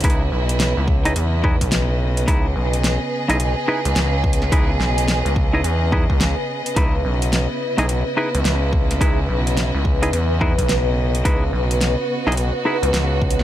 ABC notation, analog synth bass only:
X:1
M:4/4
L:1/16
Q:"Swing 16ths" 1/4=107
K:C#m
V:1 name="Analog synth bass" clef=bass
C,,2 B,,,3 C,,3 E,,3 B,,,4- B,,, | C,,2 B,,,3 z2 B,,,2 z2 C,, C,,4 | C,,2 B,,,3 C,,3 E,,3 C,,2 z3 | C,,2 B,,,3 z2 B,,,2 z2 C,, C,,4 |
C,,2 B,,,3 C,,3 E,,3 B,,,4- B,,, | C,,2 B,,,3 z2 B,,,2 z2 C,, C,,4 |]